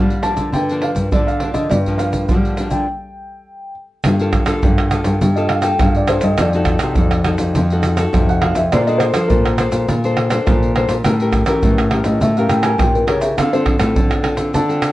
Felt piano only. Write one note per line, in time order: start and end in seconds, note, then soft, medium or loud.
0.00 0.19 F5 medium
0.23 0.51 A5 medium
0.54 0.61 G5 medium
0.82 0.89 F5 medium
1.13 1.28 D5 medium
1.27 1.54 F5 medium
1.54 1.69 D#5 medium
1.70 1.77 D5 medium
1.98 2.74 F5 medium
2.71 3.71 G5 medium
5.36 5.50 D#5 medium
5.50 5.64 F5 medium
5.63 5.79 G5 medium
5.81 5.95 F5 medium
5.96 6.10 D5 medium
6.09 6.23 C5 medium
6.24 6.38 D#5 medium
6.41 7.52 D5 medium
8.29 8.43 F#5 medium
8.41 8.56 F5 loud
8.56 8.71 E5 medium
8.73 8.87 D5 medium
8.87 9.01 D#5 medium
8.98 9.14 C5 medium
9.12 9.28 A4 medium
9.28 9.46 A#4 medium
12.05 12.20 D#5 medium
12.21 12.36 E5 medium
12.37 12.51 F5 medium
12.50 12.64 G5 medium
12.62 12.78 G#5 medium
12.79 12.94 G5 medium
12.95 13.09 A#4 medium
13.09 13.23 C#5 medium
13.21 13.36 E5 medium
13.38 13.52 F5 medium
13.53 13.62 C5 medium
14.55 14.92 A5 medium